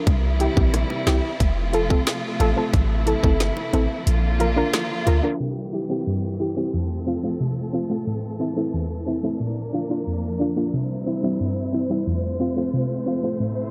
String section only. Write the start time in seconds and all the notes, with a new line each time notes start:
0.07 C3 E3 G3 E4
1.40 C3 F3 A3 F4
2.73 E3 E4
4.07 D3 F3 A#3 F4
5.40 E3 G3 C4 G4
6.74 F3 A3 A4
8.07 E3
9.40 F3 A#3 D4 A#4
10.74 G3 C4 E4 C5
12.07 A3 C4 F4
13.40 E4